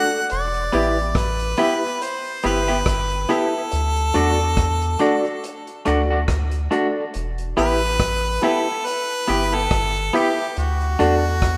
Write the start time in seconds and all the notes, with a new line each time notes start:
Already playing: D4 F#4 A4 D5 F#5
0.12 A4 D5, closed hi-hat
0.30 E1 D5, closed hi-hat
0.54 closed hi-hat
0.72 A1 B3 E4 G4 B4 E5, closed hi-hat
0.97 closed hi-hat
1.15 B4, kick, cross-stick, closed hi-hat
1.40 closed hi-hat
1.57 B3 E4 G4 B4 E5, closed hi-hat
2.02 C5, closed hi-hat
2.24 closed hi-hat
2.43 G1 B3 E4 G4 B4 E5, closed hi-hat
2.67 B3 E4 G4 B4 E5, cross-stick
2.86 G1, kick, cross-stick, closed hi-hat
3.09 closed hi-hat
3.29 B3 E4 G4 A4 B4 E5, closed hi-hat
3.54 B4 E5
3.71 D2, closed hi-hat
3.96 closed hi-hat
4.14 E2 A3 D4 F#4 A4 D5, closed hi-hat
4.40 closed hi-hat
4.57 kick, cross-stick, closed hi-hat
4.82 closed hi-hat
4.99 A3 D4 F#4 A4 D5, closed hi-hat
5.25 closed hi-hat
5.44 closed hi-hat
5.67 closed hi-hat
5.85 D2 A3 D4 F#4 A4 D5, cross-stick, closed hi-hat
6.11 A3 D4 F#4 A4 D5
6.28 D2, kick, cross-stick, closed hi-hat
6.51 closed hi-hat
6.71 A3 D4 F#4 A4 D5, closed hi-hat
6.96 A4 D5
7.14 E1, closed hi-hat
7.38 closed hi-hat
7.57 A1 B3 E4 G4 B4 E5, closed hi-hat
8.00 kick, cross-stick, closed hi-hat
8.24 closed hi-hat
8.42 B3 E4 G4 A4 B4 E5, closed hi-hat
8.68 closed hi-hat
8.86 B4, closed hi-hat
9.10 closed hi-hat
9.28 G1 B3 E4 G4 B4 E5, closed hi-hat
9.52 B3 E4 G4 A4 B4 E5
9.71 G1, kick, cross-stick, closed hi-hat
9.95 closed hi-hat
10.13 B3 E4 G4 B4 E5, closed hi-hat
10.38 B4 E5, closed hi-hat
10.56 D2 F#4, closed hi-hat
10.81 closed hi-hat
10.99 E2 A3 D4 F#4 A4 D5, closed hi-hat
11.25 closed hi-hat
11.42 kick, cross-stick, closed hi-hat